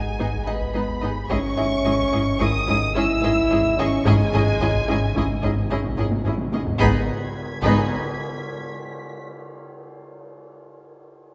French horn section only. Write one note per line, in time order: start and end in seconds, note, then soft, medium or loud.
0.00 0.47 G#3 medium
0.47 1.13 B3 medium
1.30 2.37 C#4 loud
2.40 2.95 D#3 loud
2.95 3.77 E4 loud
3.77 4.04 C#4 loud
4.04 5.66 G#3 loud
6.79 7.02 B3 medium